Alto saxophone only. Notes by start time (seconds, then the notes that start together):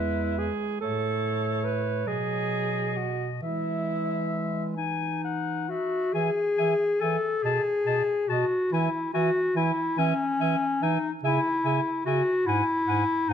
Already playing: E4
0.38 G#4
0.81 A4
1.64 B4
2.07 G#4
2.97 F#4
3.42 E4
6.14 E5
6.59 E5
7.02 E5
7.45 D#5
7.87 D#5
8.30 D#5
8.73 E5
9.14 E5
9.56 E5
9.98 E5
10.40 E5
10.82 E5
11.24 E5
11.65 E5
12.06 E5
12.47 F#5
12.87 F#5
13.30 F#5